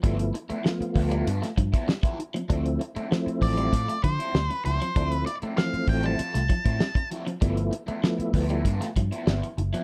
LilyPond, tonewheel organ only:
\new Staff \with { instrumentName = "Tonewheel organ" } { \time 4/4 \key d \dorian \tempo 4 = 97 <f a b e'>8 r8 <f a bes b f'>4 r2 | <f a c' e'>8 r8 <f a c' e'>4 r2 | <f a c' e'>8 r8 <e f a c'>4 r2 | <f a b e'>8 r8 <f a b e'>4 r2 | }